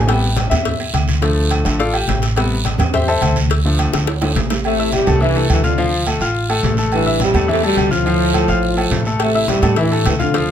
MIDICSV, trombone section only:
0, 0, Header, 1, 2, 480
1, 0, Start_track
1, 0, Key_signature, 0, "minor"
1, 0, Tempo, 284765
1, 148, Time_signature, 4, 2, 24, 8
1, 17716, End_track
2, 0, Start_track
2, 0, Title_t, "Trombone section"
2, 0, Program_c, 0, 61
2, 7844, Note_on_c, 0, 57, 112
2, 7853, Note_on_c, 0, 48, 92
2, 8282, Note_off_c, 0, 57, 0
2, 8287, Note_off_c, 0, 48, 0
2, 8310, Note_on_c, 0, 55, 105
2, 8342, Note_on_c, 0, 48, 83
2, 8755, Note_off_c, 0, 55, 0
2, 8765, Note_on_c, 0, 52, 95
2, 8772, Note_off_c, 0, 48, 0
2, 8796, Note_on_c, 0, 43, 79
2, 9221, Note_off_c, 0, 52, 0
2, 9238, Note_off_c, 0, 43, 0
2, 9246, Note_on_c, 0, 52, 90
2, 9268, Note_on_c, 0, 43, 72
2, 9478, Note_off_c, 0, 52, 0
2, 9490, Note_off_c, 0, 43, 0
2, 9497, Note_on_c, 0, 50, 88
2, 9514, Note_on_c, 0, 41, 70
2, 9947, Note_off_c, 0, 50, 0
2, 9956, Note_off_c, 0, 41, 0
2, 11675, Note_on_c, 0, 52, 110
2, 11681, Note_on_c, 0, 43, 90
2, 12116, Note_off_c, 0, 52, 0
2, 12119, Note_off_c, 0, 43, 0
2, 12175, Note_on_c, 0, 55, 110
2, 12181, Note_on_c, 0, 48, 88
2, 12607, Note_off_c, 0, 55, 0
2, 12610, Note_off_c, 0, 48, 0
2, 12634, Note_on_c, 0, 48, 92
2, 12641, Note_on_c, 0, 57, 112
2, 12853, Note_off_c, 0, 48, 0
2, 12856, Note_off_c, 0, 57, 0
2, 12873, Note_on_c, 0, 55, 117
2, 12879, Note_on_c, 0, 47, 83
2, 13316, Note_off_c, 0, 55, 0
2, 13319, Note_off_c, 0, 47, 0
2, 13334, Note_on_c, 0, 53, 120
2, 13346, Note_on_c, 0, 45, 98
2, 15193, Note_off_c, 0, 53, 0
2, 15199, Note_off_c, 0, 45, 0
2, 15499, Note_on_c, 0, 57, 108
2, 15511, Note_on_c, 0, 48, 85
2, 15949, Note_off_c, 0, 57, 0
2, 15956, Note_off_c, 0, 48, 0
2, 15980, Note_on_c, 0, 55, 99
2, 15990, Note_on_c, 0, 48, 82
2, 16431, Note_off_c, 0, 55, 0
2, 16436, Note_off_c, 0, 48, 0
2, 16468, Note_on_c, 0, 52, 102
2, 16488, Note_on_c, 0, 43, 75
2, 16915, Note_off_c, 0, 52, 0
2, 16926, Note_off_c, 0, 43, 0
2, 16947, Note_on_c, 0, 52, 85
2, 16967, Note_on_c, 0, 43, 66
2, 17056, Note_off_c, 0, 52, 0
2, 17071, Note_off_c, 0, 43, 0
2, 17192, Note_on_c, 0, 50, 92
2, 17204, Note_on_c, 0, 41, 67
2, 17638, Note_off_c, 0, 50, 0
2, 17645, Note_off_c, 0, 41, 0
2, 17716, End_track
0, 0, End_of_file